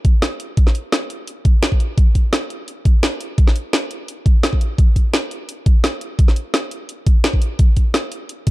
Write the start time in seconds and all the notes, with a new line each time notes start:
0.05 kick, closed hi-hat
0.22 snare, closed hi-hat
0.40 closed hi-hat
0.57 kick, closed hi-hat
0.67 snare
0.75 closed hi-hat
0.92 snare, closed hi-hat
1.10 closed hi-hat
1.27 closed hi-hat
1.45 kick, closed hi-hat
1.63 snare, closed hi-hat
1.72 kick
1.80 closed hi-hat
1.98 kick, closed hi-hat
2.15 kick, closed hi-hat
2.33 snare, closed hi-hat
2.50 closed hi-hat
2.68 closed hi-hat
2.85 kick, closed hi-hat
3.03 snare, closed hi-hat
3.21 closed hi-hat
3.38 kick, closed hi-hat
3.47 snare
3.56 closed hi-hat
3.73 snare, closed hi-hat
3.91 closed hi-hat
4.08 closed hi-hat
4.26 kick, closed hi-hat
4.43 snare, closed hi-hat
4.53 kick
4.61 closed hi-hat
4.78 kick, closed hi-hat
4.96 kick, closed hi-hat
5.14 snare, closed hi-hat
5.31 closed hi-hat
5.49 closed hi-hat
5.66 kick, closed hi-hat
5.84 snare, closed hi-hat
6.01 closed hi-hat
6.19 kick, closed hi-hat
6.28 snare
6.36 closed hi-hat
6.54 snare, closed hi-hat
6.71 closed hi-hat
6.89 closed hi-hat
7.07 kick, closed hi-hat
7.24 snare, closed hi-hat
7.34 kick
7.42 closed hi-hat
7.59 kick, closed hi-hat
7.77 kick, closed hi-hat
7.94 snare, closed hi-hat
8.12 closed hi-hat
8.29 closed hi-hat
8.47 kick, closed hi-hat